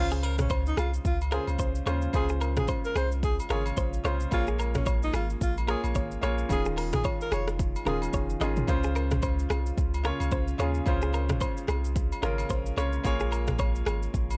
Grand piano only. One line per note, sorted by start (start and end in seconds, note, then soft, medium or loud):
0.00 0.97 C#3 medium
0.00 0.97 C#4 medium
0.00 0.97 F4 medium
0.00 0.98 C5 medium
1.31 1.82 C#3 medium
1.31 1.83 C#4 medium
1.31 1.83 F4 medium
1.31 1.83 C5 medium
1.85 2.11 C#3 medium
1.85 2.12 C#4 medium
1.85 2.12 F4 medium
1.85 2.12 C5 medium
2.12 3.15 C#3 medium
2.12 3.15 C#4 medium
2.12 3.16 F4 medium
2.12 3.16 C5 medium
3.49 4.00 C#3 medium
3.49 4.01 C#4 medium
3.49 4.01 F4 medium
3.49 4.02 C#5 medium
4.03 4.29 C#3 medium
4.03 4.30 C#4 medium
4.03 4.30 F4 medium
4.03 4.31 C5 medium
4.31 5.33 A#3 medium
4.31 5.33 F4 medium
4.31 5.34 G#4 medium
4.31 5.34 C#5 medium
5.67 6.18 A#3 medium
5.67 6.19 F4 medium
5.67 6.19 G#4 medium
5.67 6.20 C#5 medium
6.21 6.47 A#3 medium
6.21 6.48 F4 medium
6.21 6.48 G#4 medium
6.21 6.49 C#5 medium
6.49 7.51 D#3 medium
6.49 7.51 C#4 medium
6.49 7.52 F4 medium
6.49 7.52 G#4 medium
7.85 8.37 D#3 medium
7.85 8.37 C#4 medium
7.85 8.37 F4 medium
7.85 8.38 G#4 medium
8.40 8.66 D#3 medium
8.40 8.66 C#4 medium
8.40 8.67 F4 medium
8.40 8.67 G#4 medium
8.67 9.69 C#3 medium
8.67 9.70 C#4 medium
8.67 9.70 F4 medium
8.67 9.71 C5 loud
10.03 10.55 C#3 medium
10.03 10.55 C#4 medium
10.03 10.56 F4 medium
10.03 10.56 C#5 loud
10.58 10.84 C#3 medium
10.58 10.84 C#4 medium
10.58 10.85 F4 medium
10.58 10.85 G#4 medium
10.85 11.87 C#3 medium
10.85 11.88 C#4 medium
10.85 11.88 F4 medium
10.85 11.89 C5 loud
12.22 12.73 C#3 medium
12.22 12.73 C#4 medium
12.22 12.74 F4 medium
12.22 12.74 A#4 loud
12.76 13.02 C#3 medium
12.76 13.03 C#4 medium
12.76 13.03 F4 medium
12.76 13.03 C#5 medium
13.03 14.06 A#3 medium
13.03 14.06 F4 medium
13.03 14.06 G#4 medium
13.03 14.07 C#5 loud